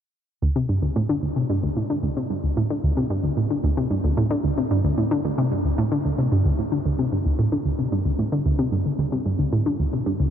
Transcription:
0.42 0.48 D2 medium
0.56 0.65 C3 medium
0.69 0.78 G2 medium
0.82 0.89 D2 medium
0.96 1.02 A2 medium
1.09 1.16 D3 medium
1.23 1.29 D2 medium
1.36 1.45 C3 medium
1.50 1.59 G2 medium
1.63 1.69 D2 medium
1.77 1.83 A2 medium
1.90 1.96 D3 medium
2.03 2.09 D2 medium
2.17 2.26 C3 medium
2.30 2.39 G2 medium
2.44 2.50 D2 medium
2.57 2.63 A2 medium
2.70 2.76 D3 medium
2.84 2.90 D2 medium
2.97 3.06 C3 medium
3.10 3.20 G2 medium
3.24 3.30 D2 medium
3.37 3.43 A2 medium
3.50 3.57 D3 medium
3.64 3.70 D2 medium
3.77 3.87 C3 medium
3.90 4.00 G2 medium
4.04 4.10 D2 medium
4.17 4.24 A2 medium
4.31 4.37 D3 medium
4.44 4.50 D2 medium
4.58 4.67 C3 medium
4.71 4.80 G2 medium
4.84 4.91 D2 medium
4.98 5.04 A2 medium
5.11 5.17 D3 medium
5.25 5.31 D2 medium
5.38 5.47 C3 medium
5.51 5.61 G2 medium
5.65 5.71 D2 medium
5.78 5.84 A2 medium
5.92 5.98 D3 medium
6.05 6.11 D2 medium
6.18 6.28 C3 medium
6.32 6.41 G2 medium
6.45 6.51 D2 medium
6.59 6.65 A2 medium
6.72 6.78 D3 medium
6.85 6.92 D2 medium
6.99 7.08 C3 medium
7.12 7.21 G2 medium
7.26 7.32 D2 medium
7.39 7.45 A2 medium
7.52 7.58 D3 medium
7.65 7.72 D2 medium
7.79 7.88 C3 medium
7.92 8.02 G2 medium
8.05 8.12 D2 medium
8.19 8.25 A2 medium
8.32 8.39 D3 medium
8.46 8.52 D2 medium
8.59 8.68 C3 medium
8.72 8.82 G2 medium
8.86 8.92 D2 medium
8.99 9.05 D2 medium
9.12 9.22 C3 medium
9.26 9.35 G2 medium
9.39 9.46 D2 medium
9.53 9.59 A2 medium
9.66 9.73 D3 medium
9.80 9.86 D2 medium
9.93 10.02 C3 medium
10.06 10.16 G2 medium
10.20 10.26 D2 medium

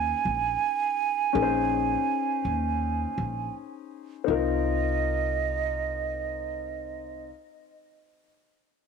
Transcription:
0.00 0.11 D#2 medium
0.00 1.30 C#4 medium
0.00 1.30 D#4 medium
0.00 1.31 G#4 medium
0.00 1.31 C5 medium
0.00 3.55 G#5 loud
0.25 0.55 A#1 medium
1.33 1.94 A#1 loud
1.33 4.22 C#4 medium
1.33 4.23 D#4 medium
1.33 4.23 G#4 medium
1.33 1.44 A#4 medium
1.42 4.27 C5 medium
2.45 3.04 D#2 medium
3.18 3.47 A#1 medium
4.24 7.30 C2 medium
4.24 7.26 C4 medium
4.24 7.28 D#4 medium
4.24 7.30 D#5 medium
4.28 7.30 F4 medium
4.28 7.32 A#4 medium

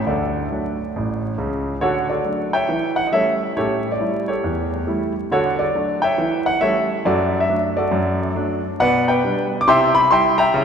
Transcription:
0.06 0.44 D2 medium
0.06 0.44 D3 medium
0.06 1.35 A4 soft
0.06 1.18 D5 medium
0.52 0.75 F#3 soft
0.52 0.76 A3 soft
0.52 0.76 D4 soft
0.96 1.32 A1 medium
0.96 1.33 A2 medium
1.38 1.73 C#2 medium
1.38 1.73 C#3 medium
1.81 2.18 D3 medium
1.81 2.08 F#4 medium
1.81 2.08 A4 medium
1.81 2.05 C#5 medium
2.09 2.51 F#4 soft
2.09 2.51 A4 soft
2.09 2.46 D5 medium
2.25 2.49 F#3 soft
2.25 2.49 A3 soft
2.25 2.50 D4 soft
2.53 2.94 C#5 medium
2.53 2.94 E5 medium
2.53 2.90 G5 medium
2.69 3.06 E3 medium
2.96 3.05 F#5 medium
3.07 3.12 D#5 medium
3.12 3.36 G3 soft
3.12 3.37 A3 soft
3.12 3.37 C#4 soft
3.12 3.54 A4 medium
3.12 3.54 C#5 medium
3.12 3.50 E5 medium
3.56 3.93 A2 medium
3.56 3.82 C#4 soft
3.56 3.90 G4 medium
3.56 3.90 A4 medium
3.56 3.87 C#5 medium
3.92 4.22 D5 medium
4.00 4.24 G3 soft
4.00 4.24 A3 soft
4.00 4.24 E4 soft
4.28 5.12 G4 medium
4.28 5.12 A4 soft
4.28 5.02 C#5 medium
4.44 4.81 E2 medium
4.87 5.11 G3 soft
4.87 5.12 A3 soft
4.87 5.12 E4 soft
5.31 5.68 D3 medium
5.31 5.58 F#4 medium
5.31 5.58 A4 medium
5.31 5.55 C#5 medium
5.59 6.00 F#4 soft
5.59 6.00 A4 medium
5.59 5.96 D5 medium
5.75 5.99 F#3 soft
5.75 5.99 A3 soft
5.75 5.99 D4 soft
6.02 6.44 C#5 medium
6.02 6.44 E5 medium
6.02 6.39 G5 medium
6.18 6.55 E3 medium
6.46 6.59 F#5 medium
6.61 6.85 G3 soft
6.61 6.85 A3 soft
6.61 6.86 C#4 soft
6.61 7.02 A4 medium
6.61 7.03 C#5 medium
6.61 6.98 E5 medium
7.05 7.42 F#2 medium
7.05 7.39 F#4 medium
7.05 7.39 A4 medium
7.05 7.36 D5 medium
7.40 7.71 E5 medium
7.49 7.73 F#3 soft
7.49 7.73 A3 soft
7.49 7.73 D4 soft
7.77 8.61 F#4 medium
7.77 8.61 A4 medium
7.77 8.51 D5 medium
7.91 8.29 F#2 medium
8.36 8.60 F#3 soft
8.36 8.60 A3 soft
8.36 8.60 D4 medium
8.80 9.17 B2 medium
8.80 9.07 B4 medium
8.80 9.07 D5 medium
8.80 9.04 F#5 loud
9.08 9.57 B4 medium
9.08 9.57 D5 medium
9.08 9.52 G5 medium
9.24 9.48 G3 medium
9.24 9.48 D4 soft
9.61 9.68 D6 loud
9.67 10.04 C3 loud
9.67 9.93 E4 medium
9.67 9.94 E5 medium
9.67 9.94 G5 medium
9.67 9.91 C6 loud
9.95 10.08 B5 loud
10.11 10.35 G3 medium
10.11 10.35 E4 medium
10.11 10.37 E5 medium
10.11 10.38 G5 medium
10.11 10.35 C6 loud
10.38 10.64 E5 medium
10.38 10.64 G5 medium
10.38 10.64 A#5 loud
10.54 10.64 C#3 loud
10.54 10.64 E4 medium

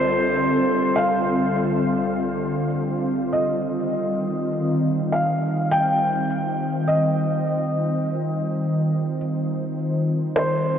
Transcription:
0.00 3.32 C2 medium
0.00 3.32 D3 medium
0.00 10.79 G3 medium
0.00 10.79 C4 medium
0.00 10.79 F4 medium
0.00 3.33 A4 medium
0.00 0.97 C5 medium
0.96 2.69 F5 medium
3.32 10.79 D#3 medium
3.32 5.16 D#5 medium
5.12 5.72 F5 medium
5.35 10.79 C5 medium
5.71 6.91 G5 loud
6.88 9.16 D#5 medium
10.36 10.79 C5 medium

